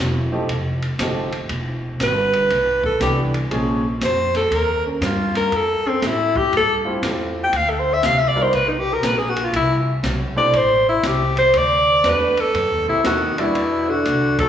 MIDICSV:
0, 0, Header, 1, 7, 480
1, 0, Start_track
1, 0, Tempo, 502092
1, 1436, Time_signature, 4, 2, 24, 8
1, 13851, End_track
2, 0, Start_track
2, 0, Title_t, "Alto saxophone"
2, 0, Program_c, 0, 65
2, 1945, Note_on_c, 0, 71, 91
2, 2690, Note_off_c, 0, 71, 0
2, 2727, Note_on_c, 0, 69, 85
2, 2871, Note_off_c, 0, 69, 0
2, 2892, Note_on_c, 0, 67, 77
2, 3078, Note_off_c, 0, 67, 0
2, 3867, Note_on_c, 0, 72, 80
2, 4148, Note_off_c, 0, 72, 0
2, 4172, Note_on_c, 0, 69, 88
2, 4346, Note_on_c, 0, 70, 95
2, 4360, Note_off_c, 0, 69, 0
2, 4642, Note_off_c, 0, 70, 0
2, 4648, Note_on_c, 0, 61, 60
2, 4801, Note_off_c, 0, 61, 0
2, 4827, Note_on_c, 0, 65, 74
2, 5129, Note_off_c, 0, 65, 0
2, 5133, Note_on_c, 0, 70, 98
2, 5315, Note_on_c, 0, 69, 97
2, 5329, Note_off_c, 0, 70, 0
2, 5621, Note_on_c, 0, 60, 82
2, 5635, Note_off_c, 0, 69, 0
2, 5800, Note_on_c, 0, 64, 84
2, 5815, Note_off_c, 0, 60, 0
2, 6090, Note_on_c, 0, 67, 96
2, 6104, Note_off_c, 0, 64, 0
2, 6242, Note_off_c, 0, 67, 0
2, 6279, Note_on_c, 0, 69, 97
2, 6456, Note_off_c, 0, 69, 0
2, 7111, Note_on_c, 0, 79, 84
2, 7236, Note_on_c, 0, 77, 93
2, 7250, Note_off_c, 0, 79, 0
2, 7359, Note_on_c, 0, 69, 65
2, 7373, Note_off_c, 0, 77, 0
2, 7448, Note_on_c, 0, 72, 94
2, 7462, Note_off_c, 0, 69, 0
2, 7588, Note_on_c, 0, 76, 92
2, 7603, Note_off_c, 0, 72, 0
2, 7699, Note_on_c, 0, 77, 99
2, 7714, Note_off_c, 0, 76, 0
2, 7821, Note_on_c, 0, 76, 78
2, 7835, Note_off_c, 0, 77, 0
2, 7919, Note_on_c, 0, 74, 96
2, 7933, Note_off_c, 0, 76, 0
2, 8052, Note_on_c, 0, 72, 87
2, 8067, Note_off_c, 0, 74, 0
2, 8167, Note_on_c, 0, 71, 93
2, 8182, Note_off_c, 0, 72, 0
2, 8305, Note_on_c, 0, 63, 57
2, 8319, Note_off_c, 0, 71, 0
2, 8399, Note_on_c, 0, 67, 104
2, 8413, Note_off_c, 0, 63, 0
2, 8539, Note_on_c, 0, 70, 91
2, 8553, Note_off_c, 0, 67, 0
2, 8663, Note_on_c, 0, 71, 93
2, 8677, Note_off_c, 0, 70, 0
2, 8777, Note_on_c, 0, 68, 81
2, 8792, Note_off_c, 0, 71, 0
2, 8883, Note_on_c, 0, 66, 88
2, 8898, Note_off_c, 0, 68, 0
2, 9029, Note_on_c, 0, 65, 86
2, 9043, Note_off_c, 0, 66, 0
2, 9110, Note_off_c, 0, 65, 0
2, 9140, Note_on_c, 0, 64, 90
2, 9322, Note_off_c, 0, 64, 0
2, 9918, Note_on_c, 0, 74, 99
2, 10098, Note_on_c, 0, 72, 96
2, 10112, Note_off_c, 0, 74, 0
2, 10402, Note_off_c, 0, 72, 0
2, 10408, Note_on_c, 0, 64, 89
2, 10584, Note_on_c, 0, 67, 82
2, 10598, Note_off_c, 0, 64, 0
2, 10879, Note_off_c, 0, 67, 0
2, 10884, Note_on_c, 0, 72, 103
2, 11066, Note_on_c, 0, 74, 110
2, 11080, Note_off_c, 0, 72, 0
2, 11553, Note_on_c, 0, 71, 92
2, 11568, Note_off_c, 0, 74, 0
2, 11857, Note_on_c, 0, 69, 105
2, 11871, Note_off_c, 0, 71, 0
2, 12317, Note_off_c, 0, 69, 0
2, 12323, Note_on_c, 0, 64, 88
2, 12467, Note_off_c, 0, 64, 0
2, 12484, Note_on_c, 0, 66, 82
2, 12808, Note_on_c, 0, 64, 87
2, 12822, Note_off_c, 0, 66, 0
2, 13288, Note_on_c, 0, 66, 83
2, 13302, Note_off_c, 0, 64, 0
2, 13760, Note_off_c, 0, 66, 0
2, 13765, Note_on_c, 0, 69, 90
2, 13851, Note_off_c, 0, 69, 0
2, 13851, End_track
3, 0, Start_track
3, 0, Title_t, "Grand piano"
3, 0, Program_c, 1, 0
3, 304, Note_on_c, 1, 53, 60
3, 306, Note_on_c, 1, 63, 62
3, 307, Note_on_c, 1, 57, 60
3, 307, Note_on_c, 1, 60, 60
3, 307, Note_on_c, 1, 67, 77
3, 455, Note_off_c, 1, 53, 0
3, 456, Note_off_c, 1, 57, 0
3, 456, Note_off_c, 1, 60, 0
3, 456, Note_off_c, 1, 63, 0
3, 457, Note_off_c, 1, 67, 0
3, 956, Note_on_c, 1, 53, 63
3, 958, Note_on_c, 1, 57, 58
3, 958, Note_on_c, 1, 63, 58
3, 959, Note_on_c, 1, 67, 69
3, 960, Note_on_c, 1, 60, 53
3, 1242, Note_off_c, 1, 53, 0
3, 1243, Note_off_c, 1, 63, 0
3, 1244, Note_off_c, 1, 57, 0
3, 1244, Note_off_c, 1, 60, 0
3, 1244, Note_off_c, 1, 67, 0
3, 2876, Note_on_c, 1, 52, 63
3, 2880, Note_on_c, 1, 59, 55
3, 2883, Note_on_c, 1, 55, 59
3, 2885, Note_on_c, 1, 62, 58
3, 2886, Note_on_c, 1, 67, 69
3, 3162, Note_off_c, 1, 52, 0
3, 3164, Note_off_c, 1, 59, 0
3, 3166, Note_off_c, 1, 55, 0
3, 3166, Note_off_c, 1, 62, 0
3, 3167, Note_off_c, 1, 67, 0
3, 3351, Note_on_c, 1, 53, 59
3, 3353, Note_on_c, 1, 56, 61
3, 3354, Note_on_c, 1, 61, 60
3, 3356, Note_on_c, 1, 58, 57
3, 3357, Note_on_c, 1, 68, 74
3, 3639, Note_off_c, 1, 53, 0
3, 3640, Note_off_c, 1, 56, 0
3, 3641, Note_off_c, 1, 61, 0
3, 3642, Note_off_c, 1, 58, 0
3, 3643, Note_off_c, 1, 68, 0
3, 6548, Note_on_c, 1, 65, 70
3, 6555, Note_on_c, 1, 57, 57
3, 6555, Note_on_c, 1, 60, 65
3, 6555, Note_on_c, 1, 67, 68
3, 6559, Note_on_c, 1, 64, 57
3, 7158, Note_off_c, 1, 65, 0
3, 7162, Note_off_c, 1, 57, 0
3, 7162, Note_off_c, 1, 60, 0
3, 7162, Note_off_c, 1, 67, 0
3, 7164, Note_off_c, 1, 64, 0
3, 7991, Note_on_c, 1, 55, 75
3, 7993, Note_on_c, 1, 59, 62
3, 7997, Note_on_c, 1, 65, 67
3, 7998, Note_on_c, 1, 63, 66
3, 7998, Note_on_c, 1, 70, 89
3, 8136, Note_off_c, 1, 55, 0
3, 8137, Note_off_c, 1, 59, 0
3, 8139, Note_off_c, 1, 65, 0
3, 8139, Note_off_c, 1, 70, 0
3, 8140, Note_off_c, 1, 63, 0
3, 9904, Note_on_c, 1, 57, 74
3, 9907, Note_on_c, 1, 60, 65
3, 9909, Note_on_c, 1, 64, 66
3, 9910, Note_on_c, 1, 67, 66
3, 9911, Note_on_c, 1, 72, 78
3, 10052, Note_off_c, 1, 57, 0
3, 10053, Note_off_c, 1, 60, 0
3, 10054, Note_off_c, 1, 64, 0
3, 10054, Note_off_c, 1, 67, 0
3, 10055, Note_off_c, 1, 72, 0
3, 11515, Note_on_c, 1, 57, 60
3, 11515, Note_on_c, 1, 62, 57
3, 11520, Note_on_c, 1, 59, 57
3, 11520, Note_on_c, 1, 66, 56
3, 11521, Note_on_c, 1, 71, 72
3, 11799, Note_off_c, 1, 57, 0
3, 11799, Note_off_c, 1, 62, 0
3, 11802, Note_off_c, 1, 59, 0
3, 11802, Note_off_c, 1, 66, 0
3, 11802, Note_off_c, 1, 71, 0
3, 12793, Note_on_c, 1, 55, 78
3, 12794, Note_on_c, 1, 62, 65
3, 12797, Note_on_c, 1, 66, 77
3, 12798, Note_on_c, 1, 64, 74
3, 12802, Note_on_c, 1, 74, 90
3, 12937, Note_off_c, 1, 55, 0
3, 12938, Note_off_c, 1, 62, 0
3, 12939, Note_off_c, 1, 66, 0
3, 12940, Note_off_c, 1, 64, 0
3, 12941, Note_off_c, 1, 74, 0
3, 13851, End_track
4, 0, Start_track
4, 0, Title_t, "Tenor saxophone"
4, 0, Program_c, 2, 66
4, 12296, Note_on_c, 2, 48, 66
4, 12453, Note_off_c, 2, 48, 0
4, 12460, Note_on_c, 2, 51, 71
4, 12794, Note_on_c, 2, 47, 84
4, 12808, Note_off_c, 2, 51, 0
4, 13280, Note_on_c, 2, 50, 74
4, 13294, Note_off_c, 2, 47, 0
4, 13756, Note_off_c, 2, 50, 0
4, 13764, Note_on_c, 2, 54, 73
4, 13851, Note_off_c, 2, 54, 0
4, 13851, End_track
5, 0, Start_track
5, 0, Title_t, "Upright bass"
5, 0, Program_c, 3, 32
5, 0, Note_on_c, 3, 28, 95
5, 458, Note_off_c, 3, 28, 0
5, 468, Note_on_c, 3, 29, 81
5, 937, Note_off_c, 3, 29, 0
5, 943, Note_on_c, 3, 31, 83
5, 1414, Note_off_c, 3, 31, 0
5, 1427, Note_on_c, 3, 28, 87
5, 1897, Note_off_c, 3, 28, 0
5, 1908, Note_on_c, 3, 31, 96
5, 2377, Note_off_c, 3, 31, 0
5, 2390, Note_on_c, 3, 35, 82
5, 2858, Note_off_c, 3, 35, 0
5, 2868, Note_on_c, 3, 36, 85
5, 3337, Note_off_c, 3, 36, 0
5, 3350, Note_on_c, 3, 34, 80
5, 3818, Note_off_c, 3, 34, 0
5, 3830, Note_on_c, 3, 41, 100
5, 4298, Note_off_c, 3, 41, 0
5, 4310, Note_on_c, 3, 39, 81
5, 4777, Note_off_c, 3, 39, 0
5, 4790, Note_on_c, 3, 43, 88
5, 5258, Note_off_c, 3, 43, 0
5, 5271, Note_on_c, 3, 41, 79
5, 5569, Note_off_c, 3, 41, 0
5, 5753, Note_on_c, 3, 45, 97
5, 6218, Note_off_c, 3, 45, 0
5, 6237, Note_on_c, 3, 43, 83
5, 6701, Note_off_c, 3, 43, 0
5, 6717, Note_on_c, 3, 40, 92
5, 7180, Note_off_c, 3, 40, 0
5, 7196, Note_on_c, 3, 38, 87
5, 7659, Note_off_c, 3, 38, 0
5, 7674, Note_on_c, 3, 36, 92
5, 8138, Note_off_c, 3, 36, 0
5, 8150, Note_on_c, 3, 35, 75
5, 8616, Note_off_c, 3, 35, 0
5, 8629, Note_on_c, 3, 34, 92
5, 9095, Note_off_c, 3, 34, 0
5, 9110, Note_on_c, 3, 36, 84
5, 9576, Note_off_c, 3, 36, 0
5, 9589, Note_on_c, 3, 35, 100
5, 10055, Note_off_c, 3, 35, 0
5, 10067, Note_on_c, 3, 33, 85
5, 10534, Note_off_c, 3, 33, 0
5, 10547, Note_on_c, 3, 36, 92
5, 11014, Note_off_c, 3, 36, 0
5, 11027, Note_on_c, 3, 38, 90
5, 11494, Note_off_c, 3, 38, 0
5, 11505, Note_on_c, 3, 40, 94
5, 11973, Note_off_c, 3, 40, 0
5, 11990, Note_on_c, 3, 42, 92
5, 12142, Note_off_c, 3, 42, 0
5, 12142, Note_on_c, 3, 39, 61
5, 12299, Note_off_c, 3, 39, 0
5, 12304, Note_on_c, 3, 35, 59
5, 12456, Note_off_c, 3, 35, 0
5, 12471, Note_on_c, 3, 39, 90
5, 12937, Note_off_c, 3, 39, 0
5, 12951, Note_on_c, 3, 40, 73
5, 13418, Note_off_c, 3, 40, 0
5, 13433, Note_on_c, 3, 36, 90
5, 13851, Note_off_c, 3, 36, 0
5, 13851, End_track
6, 0, Start_track
6, 0, Title_t, "Muted upright bass strokes"
6, 5589, Note_on_c, 9, 29, 41
6, 5685, Note_off_c, 9, 29, 0
6, 13851, End_track
7, 0, Start_track
7, 0, Title_t, "Drums"
7, 468, Note_on_c, 9, 36, 20
7, 469, Note_on_c, 9, 51, 51
7, 564, Note_off_c, 9, 36, 0
7, 564, Note_off_c, 9, 51, 0
7, 787, Note_on_c, 9, 51, 45
7, 883, Note_off_c, 9, 51, 0
7, 945, Note_on_c, 9, 38, 69
7, 947, Note_on_c, 9, 44, 52
7, 947, Note_on_c, 9, 51, 72
7, 948, Note_on_c, 9, 36, 25
7, 1041, Note_off_c, 9, 38, 0
7, 1043, Note_off_c, 9, 36, 0
7, 1043, Note_off_c, 9, 44, 0
7, 1043, Note_off_c, 9, 51, 0
7, 1266, Note_on_c, 9, 51, 48
7, 1361, Note_off_c, 9, 51, 0
7, 1426, Note_on_c, 9, 51, 56
7, 1428, Note_on_c, 9, 36, 17
7, 1522, Note_off_c, 9, 51, 0
7, 1524, Note_off_c, 9, 36, 0
7, 1909, Note_on_c, 9, 38, 62
7, 1910, Note_on_c, 9, 36, 19
7, 1911, Note_on_c, 9, 44, 59
7, 1911, Note_on_c, 9, 51, 65
7, 2005, Note_off_c, 9, 36, 0
7, 2005, Note_off_c, 9, 38, 0
7, 2007, Note_off_c, 9, 44, 0
7, 2007, Note_off_c, 9, 51, 0
7, 2231, Note_on_c, 9, 51, 50
7, 2327, Note_off_c, 9, 51, 0
7, 2391, Note_on_c, 9, 38, 35
7, 2392, Note_on_c, 9, 36, 19
7, 2393, Note_on_c, 9, 51, 53
7, 2487, Note_off_c, 9, 38, 0
7, 2488, Note_off_c, 9, 36, 0
7, 2489, Note_off_c, 9, 51, 0
7, 2711, Note_on_c, 9, 36, 55
7, 2806, Note_off_c, 9, 36, 0
7, 2871, Note_on_c, 9, 38, 73
7, 2872, Note_on_c, 9, 36, 20
7, 2873, Note_on_c, 9, 44, 60
7, 2873, Note_on_c, 9, 51, 69
7, 2967, Note_off_c, 9, 38, 0
7, 2968, Note_off_c, 9, 36, 0
7, 2969, Note_off_c, 9, 44, 0
7, 2969, Note_off_c, 9, 51, 0
7, 3195, Note_on_c, 9, 51, 50
7, 3290, Note_off_c, 9, 51, 0
7, 3353, Note_on_c, 9, 36, 25
7, 3357, Note_on_c, 9, 51, 60
7, 3449, Note_off_c, 9, 36, 0
7, 3452, Note_off_c, 9, 51, 0
7, 3834, Note_on_c, 9, 36, 19
7, 3835, Note_on_c, 9, 38, 64
7, 3836, Note_on_c, 9, 44, 59
7, 3836, Note_on_c, 9, 51, 62
7, 3929, Note_off_c, 9, 36, 0
7, 3930, Note_off_c, 9, 38, 0
7, 3932, Note_off_c, 9, 44, 0
7, 3932, Note_off_c, 9, 51, 0
7, 4153, Note_on_c, 9, 38, 40
7, 4155, Note_on_c, 9, 51, 49
7, 4249, Note_off_c, 9, 38, 0
7, 4251, Note_off_c, 9, 51, 0
7, 4313, Note_on_c, 9, 36, 20
7, 4317, Note_on_c, 9, 51, 56
7, 4408, Note_off_c, 9, 36, 0
7, 4413, Note_off_c, 9, 51, 0
7, 4794, Note_on_c, 9, 36, 25
7, 4794, Note_on_c, 9, 38, 66
7, 4796, Note_on_c, 9, 44, 67
7, 4796, Note_on_c, 9, 51, 69
7, 4889, Note_off_c, 9, 36, 0
7, 4890, Note_off_c, 9, 38, 0
7, 4892, Note_off_c, 9, 44, 0
7, 4892, Note_off_c, 9, 51, 0
7, 5115, Note_on_c, 9, 38, 46
7, 5116, Note_on_c, 9, 51, 50
7, 5210, Note_off_c, 9, 38, 0
7, 5212, Note_off_c, 9, 51, 0
7, 5275, Note_on_c, 9, 36, 22
7, 5278, Note_on_c, 9, 51, 54
7, 5370, Note_off_c, 9, 36, 0
7, 5374, Note_off_c, 9, 51, 0
7, 5756, Note_on_c, 9, 36, 22
7, 5756, Note_on_c, 9, 38, 68
7, 5758, Note_on_c, 9, 44, 62
7, 5758, Note_on_c, 9, 51, 62
7, 5851, Note_off_c, 9, 36, 0
7, 5851, Note_off_c, 9, 38, 0
7, 5853, Note_off_c, 9, 44, 0
7, 5853, Note_off_c, 9, 51, 0
7, 6075, Note_on_c, 9, 36, 56
7, 6171, Note_off_c, 9, 36, 0
7, 6237, Note_on_c, 9, 36, 24
7, 6240, Note_on_c, 9, 51, 50
7, 6333, Note_off_c, 9, 36, 0
7, 6336, Note_off_c, 9, 51, 0
7, 6716, Note_on_c, 9, 36, 29
7, 6716, Note_on_c, 9, 38, 72
7, 6718, Note_on_c, 9, 44, 59
7, 6718, Note_on_c, 9, 51, 79
7, 6812, Note_off_c, 9, 36, 0
7, 6812, Note_off_c, 9, 38, 0
7, 6814, Note_off_c, 9, 44, 0
7, 6814, Note_off_c, 9, 51, 0
7, 7196, Note_on_c, 9, 36, 26
7, 7196, Note_on_c, 9, 51, 58
7, 7291, Note_off_c, 9, 51, 0
7, 7292, Note_off_c, 9, 36, 0
7, 7675, Note_on_c, 9, 36, 17
7, 7675, Note_on_c, 9, 38, 67
7, 7677, Note_on_c, 9, 44, 63
7, 7677, Note_on_c, 9, 51, 73
7, 7770, Note_off_c, 9, 36, 0
7, 7771, Note_off_c, 9, 38, 0
7, 7773, Note_off_c, 9, 44, 0
7, 7773, Note_off_c, 9, 51, 0
7, 8153, Note_on_c, 9, 51, 53
7, 8154, Note_on_c, 9, 36, 21
7, 8249, Note_off_c, 9, 51, 0
7, 8250, Note_off_c, 9, 36, 0
7, 8631, Note_on_c, 9, 38, 77
7, 8632, Note_on_c, 9, 36, 24
7, 8633, Note_on_c, 9, 44, 63
7, 8633, Note_on_c, 9, 51, 78
7, 8726, Note_off_c, 9, 38, 0
7, 8728, Note_off_c, 9, 36, 0
7, 8728, Note_off_c, 9, 44, 0
7, 8728, Note_off_c, 9, 51, 0
7, 8953, Note_on_c, 9, 51, 55
7, 9048, Note_off_c, 9, 51, 0
7, 9111, Note_on_c, 9, 36, 19
7, 9115, Note_on_c, 9, 51, 62
7, 9207, Note_off_c, 9, 36, 0
7, 9211, Note_off_c, 9, 51, 0
7, 9590, Note_on_c, 9, 36, 27
7, 9592, Note_on_c, 9, 38, 76
7, 9594, Note_on_c, 9, 44, 57
7, 9594, Note_on_c, 9, 51, 65
7, 9686, Note_off_c, 9, 36, 0
7, 9688, Note_off_c, 9, 38, 0
7, 9690, Note_off_c, 9, 44, 0
7, 9690, Note_off_c, 9, 51, 0
7, 10068, Note_on_c, 9, 36, 18
7, 10071, Note_on_c, 9, 51, 56
7, 10164, Note_off_c, 9, 36, 0
7, 10167, Note_off_c, 9, 51, 0
7, 10546, Note_on_c, 9, 38, 78
7, 10548, Note_on_c, 9, 36, 22
7, 10548, Note_on_c, 9, 44, 69
7, 10548, Note_on_c, 9, 51, 76
7, 10642, Note_off_c, 9, 38, 0
7, 10643, Note_off_c, 9, 36, 0
7, 10644, Note_off_c, 9, 44, 0
7, 10644, Note_off_c, 9, 51, 0
7, 10868, Note_on_c, 9, 51, 49
7, 10964, Note_off_c, 9, 51, 0
7, 11027, Note_on_c, 9, 36, 25
7, 11028, Note_on_c, 9, 51, 64
7, 11122, Note_off_c, 9, 36, 0
7, 11124, Note_off_c, 9, 51, 0
7, 11508, Note_on_c, 9, 36, 25
7, 11508, Note_on_c, 9, 38, 70
7, 11510, Note_on_c, 9, 44, 64
7, 11510, Note_on_c, 9, 51, 70
7, 11603, Note_off_c, 9, 36, 0
7, 11603, Note_off_c, 9, 38, 0
7, 11605, Note_off_c, 9, 44, 0
7, 11605, Note_off_c, 9, 51, 0
7, 11828, Note_on_c, 9, 51, 50
7, 11924, Note_off_c, 9, 51, 0
7, 11989, Note_on_c, 9, 36, 21
7, 11993, Note_on_c, 9, 51, 62
7, 12085, Note_off_c, 9, 36, 0
7, 12088, Note_off_c, 9, 51, 0
7, 12469, Note_on_c, 9, 38, 85
7, 12470, Note_on_c, 9, 36, 26
7, 12471, Note_on_c, 9, 44, 55
7, 12471, Note_on_c, 9, 51, 75
7, 12564, Note_off_c, 9, 38, 0
7, 12566, Note_off_c, 9, 36, 0
7, 12566, Note_off_c, 9, 44, 0
7, 12566, Note_off_c, 9, 51, 0
7, 12792, Note_on_c, 9, 51, 54
7, 12888, Note_off_c, 9, 51, 0
7, 12953, Note_on_c, 9, 36, 18
7, 12955, Note_on_c, 9, 51, 55
7, 13048, Note_off_c, 9, 36, 0
7, 13050, Note_off_c, 9, 51, 0
7, 13434, Note_on_c, 9, 36, 24
7, 13436, Note_on_c, 9, 44, 48
7, 13436, Note_on_c, 9, 51, 57
7, 13530, Note_off_c, 9, 36, 0
7, 13532, Note_off_c, 9, 44, 0
7, 13532, Note_off_c, 9, 51, 0
7, 13753, Note_on_c, 9, 36, 77
7, 13753, Note_on_c, 9, 51, 71
7, 13848, Note_off_c, 9, 51, 0
7, 13849, Note_off_c, 9, 36, 0
7, 13851, End_track
0, 0, End_of_file